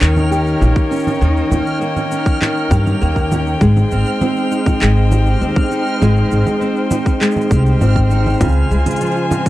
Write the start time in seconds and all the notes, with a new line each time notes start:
Already playing: A#3 C#4 D#4 A#4 C#5 G5 F6
0.01 D#2 D#3, clap
0.16 low conga, shaker
0.31 G4, shaker
0.47 shaker
0.61 A#1 A#3, low conga, shaker
0.76 kick, shaker
0.91 C#4, shaker
0.96 shaker
0.99 shaker
1.03 low conga, shaker
1.07 shaker
1.10 shaker
1.18 D#2 D#3, shaker
1.22 shaker
1.37 shaker
1.51 D#2 A#3, low conga, shaker
1.67 shaker
1.81 A#3, shaker
1.97 low conga, shaker
2.11 C#4, shaker
2.26 kick, shaker
2.41 D#3, clap, low conga, shaker
2.57 shaker
2.71 G2 G4, kick, shaker
2.86 low conga, shaker
3.01 D#2 A#3, shaker
3.16 kick, shaker
3.31 C#4, low conga, shaker
3.47 shaker
3.61 G#1 G#3 D#4 C5, kick, shaker
3.77 low conga, shaker
3.91 G#1 C4, shaker
4.06 shaker
4.21 C4, low conga, shaker
4.36 shaker
4.51 D#4, shaker
4.66 kick, low conga, shaker
4.81 G#1 G#3, clap, shaker
4.96 shaker
5.11 G4, low conga, shaker
5.27 shaker
5.41 D#2 C4, shaker
5.56 kick, low conga, shaker
5.71 D#4, shaker
5.87 shaker
6.01 G#1 G#3, low conga, shaker
6.17 shaker
6.31 G#1 C4, shaker
6.46 low conga, shaker
6.61 C4, shaker
6.76 shaker
6.91 D#4, low conga, shaker
7.06 kick, shaker
7.21 G#3, clap, shaker
7.31 shaker
7.36 low conga, shaker
7.41 shaker
7.51 C2 G4, kick, shaker
7.66 shaker
7.81 G#1 C4, low conga, shaker
7.96 kick, shaker
8.11 D#4, shaker
8.26 low conga, shaker
8.30 shaker
8.33 shaker
8.37 open hi-hat, low conga, shaker
8.41 C#2 C#3 F4 G#5, kick, shaker
8.45 shaker
8.48 shaker
8.52 shaker
8.71 C#2 G#3, shaker
8.86 open hi-hat, low conga, shaker
8.91 open hi-hat
8.96 open hi-hat
9.01 F3, open hi-hat, shaker
9.06 open hi-hat
9.12 open hi-hat
9.16 shaker
9.31 C4, low conga, shaker
9.46 kick, open hi-hat, shaker